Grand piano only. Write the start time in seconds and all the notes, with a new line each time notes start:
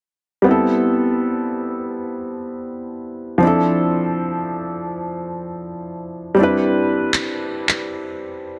0.42 G3 B3
0.46 C4 E4
0.51 A4
3.38 F3 C4
3.42 D4 E4
3.47 A4
6.35 G3 C4
6.39 D4 E4
6.43 B4